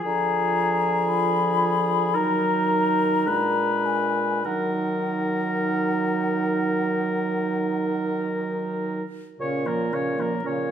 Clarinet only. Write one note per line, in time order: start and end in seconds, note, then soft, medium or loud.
0.05 2.16 F4 soft
2.14 3.29 D#4 soft
3.28 4.46 D4 soft
4.46 9.04 D#4 soft
9.39 9.67 C#4 soft
9.65 9.94 A#3 soft
9.92 10.20 C#4 soft
10.18 10.42 A#3 soft
10.43 10.70 C#4 soft